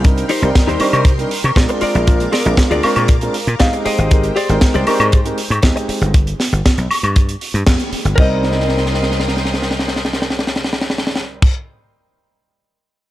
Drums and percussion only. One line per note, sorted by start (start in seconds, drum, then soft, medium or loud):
0.04 kick loud
0.04 closed hi-hat medium
0.18 closed hi-hat medium
0.29 open hi-hat loud
0.42 closed hi-hat medium
0.55 kick loud
0.55 snare loud
0.55 closed hi-hat loud
0.69 closed hi-hat medium
0.80 open hi-hat loud
0.80 high woodblock medium
0.93 closed hi-hat medium
0.93 high woodblock medium
1.05 kick loud
1.05 closed hi-hat loud
1.19 closed hi-hat medium
1.31 open hi-hat loud
1.44 closed hi-hat medium
1.44 high woodblock medium
1.56 kick loud
1.56 snare loud
1.56 closed hi-hat medium
1.69 closed hi-hat medium
1.81 open hi-hat loud
1.95 closed hi-hat soft
2.07 kick loud
2.07 closed hi-hat medium
2.20 closed hi-hat medium
2.33 snare medium
2.33 open hi-hat loud
2.45 closed hi-hat medium
2.57 kick loud
2.57 snare loud
2.57 closed hi-hat loud
2.71 closed hi-hat medium
2.83 open hi-hat loud
2.83 high woodblock medium
2.96 closed hi-hat medium
2.96 high woodblock medium
3.08 kick loud
3.08 closed hi-hat loud
3.21 closed hi-hat medium
3.34 open hi-hat loud
3.47 closed hi-hat medium
3.60 kick medium
3.60 snare loud
3.60 closed hi-hat loud
3.73 closed hi-hat medium
3.86 open hi-hat loud
3.98 closed hi-hat medium
4.11 kick loud
4.11 closed hi-hat loud
4.24 closed hi-hat medium
4.36 open hi-hat loud
4.49 closed hi-hat medium
4.61 kick loud
4.61 snare loud
4.61 closed hi-hat loud
4.74 closed hi-hat medium
4.87 open hi-hat loud
4.87 high woodblock medium
5.00 closed hi-hat medium
5.00 high woodblock medium
5.12 kick loud
5.12 closed hi-hat loud
5.26 closed hi-hat medium
5.38 open hi-hat loud
5.52 closed hi-hat medium
5.52 high woodblock medium
5.63 kick loud
5.63 snare loud
5.63 closed hi-hat medium
5.77 closed hi-hat medium
5.89 open hi-hat loud
6.02 closed hi-hat medium
6.14 kick loud
6.14 closed hi-hat loud
6.27 closed hi-hat medium
6.40 snare medium
6.40 open hi-hat loud
6.53 closed hi-hat medium
6.66 kick loud
6.66 snare loud
6.66 closed hi-hat loud
6.78 closed hi-hat medium
6.91 open hi-hat loud
6.91 high woodblock medium
7.04 closed hi-hat medium
7.04 high woodblock medium
7.16 kick loud
7.16 closed hi-hat loud
7.29 closed hi-hat medium
7.41 open hi-hat loud
7.55 closed hi-hat medium
7.67 kick loud
7.67 snare loud
7.67 closed hi-hat loud
7.80 closed hi-hat medium
7.93 open hi-hat loud
8.05 closed hi-hat medium
8.18 kick loud
8.18 crash loud
8.43 snare medium
8.52 snare medium
8.60 snare medium
8.69 snare medium
8.77 snare medium
8.86 snare medium
8.94 snare medium
9.03 snare medium
9.11 snare medium
9.20 snare medium
9.28 snare medium
9.37 snare medium
9.45 snare medium
9.54 snare medium
9.62 snare medium
9.71 snare medium
9.79 snare medium
9.88 snare medium
9.96 snare medium
10.05 snare medium
10.13 snare medium
10.22 snare medium
10.30 snare medium
10.39 snare medium
10.47 snare medium
10.56 snare medium
10.64 snare medium
10.73 snare medium
10.81 snare medium
10.90 snare medium
10.98 snare medium
11.07 snare loud
11.16 snare loud
11.42 kick loud
11.42 crash loud